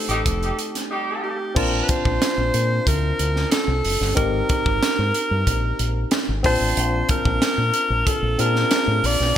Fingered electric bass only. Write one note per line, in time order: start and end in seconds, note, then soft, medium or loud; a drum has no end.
0.09 0.21 A1 medium
0.26 0.51 F1 loud
1.56 1.81 A#1 loud
2.05 2.17 A#1 loud
2.38 2.50 A#1 medium
2.54 2.78 A#2 loud
2.87 3.11 D2 loud
3.19 3.44 D2 medium
3.68 3.80 C2 medium
3.84 3.96 F#1 medium
4.01 4.13 G1 loud
4.17 4.42 G#1 loud
4.66 4.78 G#1 loud
4.82 muted fingered electric bass stroke soft
4.99 5.11 G#2 loud
5.31 5.43 G2 medium
5.47 5.71 A#1 loud
5.79 6.04 A#1 medium
6.29 6.41 G#1 medium
6.45 6.57 A#1 medium
6.61 6.73 A1 medium
6.77 7.01 A#1 loud
7.25 7.38 A#1 loud
7.41 muted fingered electric bass stroke medium
7.58 7.70 A#2 medium
7.90 8.02 A#1 medium
8.22 8.35 A#1 loud
8.39 8.63 A#2 loud
8.88 9.00 A2 loud
9.04 9.16 A#1 medium
9.20 9.32 B1 medium